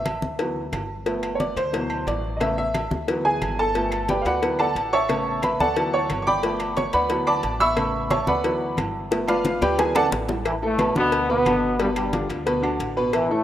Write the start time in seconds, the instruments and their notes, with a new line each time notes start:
Already playing: upright bass A1, upright piano E5
0.06 cowbell, high conga, low agogo, claves
0.22 upright bass D2, high conga
0.39 upright piano E3 F#3 B3, cowbell, high conga, low agogo
0.56 high conga
0.72 upright bass G1, cowbell, high conga, low timbale, low agogo, claves
1.06 upright piano F3 A3 B3, cowbell, high conga, low agogo
1.23 cowbell, high conga, low agogo, claves
1.35 upright piano C#5
1.40 upright piano D5, cowbell, high conga
1.56 upright bass D2, upright piano C5, cowbell, high conga, low agogo
1.73 upright piano B2 E3 F#3, cowbell, high conga, low agogo
1.90 high conga, low agogo, claves
2.07 upright bass A1, upright piano D5, cowbell, high conga, low timbale
2.24 high conga
2.37 upright piano C#3 D#5, low agogo, claves
2.41 upright piano A3 B3 E5, cowbell, high conga
2.58 upright piano E5, high conga
2.74 cowbell, high conga, low agogo, claves
2.91 upright bass D2, high conga
3.08 upright piano E3 F#3 B3, cowbell, high conga, low agogo
3.25 upright piano G#4 G#5, high conga
3.41 upright bass G1, cowbell, high conga, low agogo, claves
3.59 upright piano A4 A5
3.75 upright piano F3 A3 B3, cowbell, high conga, low agogo
3.92 cowbell, high conga, low agogo, claves
4.09 upright piano G4 B4 D5 G5, cowbell, high conga
4.22 upright bass D2, upright piano F5, high conga, low agogo
4.26 upright piano F#4 B4 D5 F#5, cowbell
4.42 upright piano E3 F#3 B3, cowbell, high conga, low agogo
4.59 upright piano A4 D5 F#5 A5, high conga, low agogo, claves
4.75 upright bass A1, cowbell, high conga
4.93 upright piano C#5 E5 A5 C#6, high conga
5.09 upright piano C#3 A3 B3, cowbell, high conga, low agogo, claves
5.27 high conga
5.42 upright piano B4 E5 B5, cowbell, high conga, low agogo, claves
5.59 upright bass D2, upright piano A4 D5 F#5 A5, high conga
5.76 upright piano E3 F#3 B3, cowbell, high conga, low agogo
5.93 upright piano C#5 C#6, high conga
6.10 upright bass G1, cowbell, high conga, low agogo, claves
6.22 upright piano C#6
6.27 upright piano D5 G5 B5 D6, high conga
6.43 upright piano F3 A3 B3, cowbell, high conga, low agogo
6.60 cowbell, high conga, low agogo, claves
6.77 upright piano C#5 C#6, cowbell, high conga
6.93 upright bass D2, upright piano B4 D5 F#5 B5, cowbell, high conga, low agogo
7.09 upright piano E3 F#3 B3, cowbell, high conga, low agogo
7.27 upright piano D5 A5 B5 D6, high conga, low agogo, claves
7.43 upright bass A1, cowbell, high conga
7.60 upright piano E5 B5 C#6 E6, high conga
7.77 upright piano C#3 A3 B3, cowbell, high conga, low agogo, claves
7.94 high conga
8.10 upright piano C#5 E5 A5 C#6, cowbell, high conga, low agogo, claves
8.27 upright bass D2, upright piano B4 D5 F#5 B5, high conga
8.44 upright piano E3 F#3 B3, cowbell, high conga, low agogo
8.61 high conga
8.77 upright bass G1, cowbell, high conga, low timbale, low agogo, claves
9.11 upright piano F3 A3 B3, cowbell, high bongo, high conga, low agogo
9.28 upright piano F4 B4 D5 F5, cowbell, high bongo, high conga, low agogo, claves
9.45 cowbell, high bongo, high conga
9.61 upright bass D2, upright piano G4 B4 D5 G5, cowbell, low bongo, high conga, low agogo
9.78 upright piano E3 F#3 B3 G#4 G#5, cowbell, low bongo, high conga, low agogo
9.95 upright piano A4 D5 F#5 A5, low bongo, high conga, high timbale, low agogo, claves
10.11 upright bass A1, cowbell, low bongo, high conga
10.29 low bongo, high conga, low timbale
10.45 trombone section E3 E4, cowbell, high conga, low agogo, claves
10.62 trombone section A2 A3, upright piano E3 E4 A4, high conga
10.79 upright piano B2 B3 B4, cowbell, high conga, low agogo, claves
10.95 upright bass D2, trombone section B2 B3, upright piano D3 D4 F#4, high conga
11.12 cowbell, high conga, low agogo
11.29 upright piano B2 B3 B4, trombone section B2 B3, high conga
11.45 upright bass G1, upright piano D3 D4 F#4, cowbell, high conga, low agogo, claves
11.80 trombone section G2 G3, upright piano B2 B3 B4, cowbell, high conga, low agogo
11.96 trombone section G2 G3, cowbell, high conga, low agogo, claves
12.13 upright piano D3 D4 F4, cowbell, high conga
12.29 upright bass D2, cowbell, high conga, low agogo
12.46 upright piano B2 B3 B4, cowbell, high conga, low agogo
12.62 upright piano D3 D4 F#4, high conga, low agogo, claves
12.80 upright bass A1, cowbell, high conga
12.97 upright piano B2 B3 B4, high conga
13.13 trombone section E3 E4, cowbell, high conga, low agogo, claves
13.30 trombone section A2 A3, upright piano E3 E4 A4, high conga